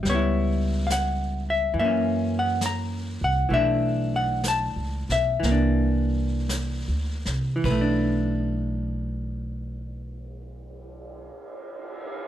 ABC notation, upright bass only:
X:1
M:4/4
L:1/8
Q:"Swing" 1/4=59
K:Bm
V:1 name="Upright bass" clef=bass
C,,4 F,,3 =C,, | B,,,2- (3B,,, C,, B,,, =C,,2- (3C,, D,, C,, | B,,,8 |]